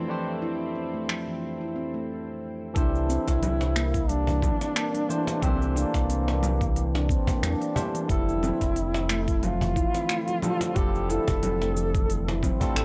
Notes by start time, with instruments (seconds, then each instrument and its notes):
Already playing: tine electric piano F2 A3 D4 E4 G4 C5, handpan E3, synth drone C4 E4 A4 C5, synth texture C5
0.07 tine electric piano F2 A3 D4 E4 G4 C5
0.42 handpan E4
0.76 handpan C4
0.94 handpan A3
1.09 handpan F3, finger snap
1.27 handpan E3
1.61 handpan E4
1.76 handpan C4
1.94 handpan A3
2.74 analog synth bass C2, tine electric piano E3 D4 G4 A4, handpan D4, duduk E4, kick, open hi-hat, shaker
2.78 tine electric piano C5
2.95 shaker
3.09 handpan C4, cajon slap, shaker
3.28 analog synth bass C2, kick, cajon slap, open hi-hat, shaker
3.43 open hi-hat, low conga, shaker
3.61 cajon slap, shaker
3.76 handpan A#3, finger snap, shaker
3.94 kick, open hi-hat, shaker
4.09 handpan G3, duduk D4, open hi-hat, shaker
4.27 handpan E3, cajon bass, shaker
4.42 handpan D4, kick, low conga, shaker
4.61 handpan C4, cajon slap, open hi-hat, shaker
4.76 handpan A#3, finger snap, open hi-hat, shaker
4.94 handpan G3, open hi-hat, shaker
5.08 tine electric piano E3 A3 D4 G4 C5, handpan E3, shaker
5.27 cajon slap, open hi-hat, shaker
5.41 analog synth bass C2, tine electric piano E3 D4 G4 A4 C5, duduk C4, kick, open hi-hat, low conga, shaker
5.62 shaker
5.76 duduk A#3, handpan D4, cajon slap, shaker
5.94 analog synth bass C2, kick, cajon slap, open hi-hat, shaker
6.09 handpan C4, open hi-hat, shaker
6.28 handpan A#3, cajon slap, shaker
6.43 handpan G3, low conga, shaker
6.61 handpan E3, kick, open hi-hat, shaker
6.76 open hi-hat, shaker
6.95 handpan D4, cajon slap, shaker
7.09 handpan C4, kick, shaker
7.27 handpan A#3, cajon bass, kick, open hi-hat, shaker
7.43 analog synth bass E2, duduk D4, finger snap, open hi-hat, low conga, shaker
7.62 open hi-hat, shaker
7.75 tine electric piano E3 A3 D4 G4 C5, handpan G3, cajon bass, shaker
7.94 handpan E3, open hi-hat, shaker
8.07 analog synth bass F1, tine electric piano D3 G3 C4, handpan E4, duduk E4, kick, open hi-hat, shaker
8.11 tine electric piano A4
8.29 shaker
8.43 handpan C4, cajon slap, low conga, shaker
8.61 analog synth bass F1, kick, cajon slap, open hi-hat, shaker
8.76 open hi-hat, shaker
8.94 cajon slap, shaker
9.09 handpan A3, finger snap, shaker
9.28 kick, open hi-hat, shaker
9.43 handpan F3, duduk F4, open hi-hat, low conga, shaker
9.61 handpan E3, cajon bass, shaker
9.76 handpan E4, kick, shaker
9.94 handpan C4, cajon slap, open hi-hat, shaker
10.09 handpan A3, finger snap, open hi-hat, shaker
10.28 handpan F3, open hi-hat, shaker
10.42 tine electric piano D3 G3 C4 F4 A4, handpan F3, low conga, shaker
10.61 cajon slap, open hi-hat, shaker
10.74 analog synth bass F1, tine electric piano D3 G3 C4, duduk G4, kick, open hi-hat, shaker
10.78 tine electric piano A4
10.95 shaker
11.09 handpan E4, duduk A4, cajon slap, shaker
11.28 analog synth bass F1, cajon bass, kick, cajon slap, open hi-hat, shaker
11.43 handpan C4, open hi-hat, low conga, shaker
11.61 handpan A3, cajon slap, shaker
11.76 handpan F3, shaker
11.95 handpan E3, kick, open hi-hat, shaker
12.10 open hi-hat, shaker
12.28 handpan E4, cajon slap, shaker
12.43 handpan C4, kick, low conga, shaker
12.60 tine electric piano D3 G3 C4 F4 A4, handpan A3, cajon bass, kick, open hi-hat, shaker
12.76 analog synth bass A1, duduk A4, finger snap, open hi-hat, shaker